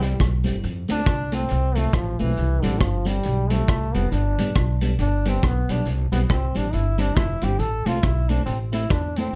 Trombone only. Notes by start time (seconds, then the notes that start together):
0.02 G3
0.92 D4
1.34 C4
1.76 A3
1.94 F3
2.20 E3
2.62 D3
2.79 F3
3.07 G3
3.50 A3
3.95 B3
4.12 D4
5.01 D4
5.29 C4
5.46 B3
5.71 D4
6.12 B3
6.31 C4
6.57 D4
6.73 E4
6.99 D4
7.16 E4
7.44 G4
7.60 A4
7.86 F4
8.04 E4
8.29 D4
8.46 C4
8.73 E4
8.91 D4
9.17 C4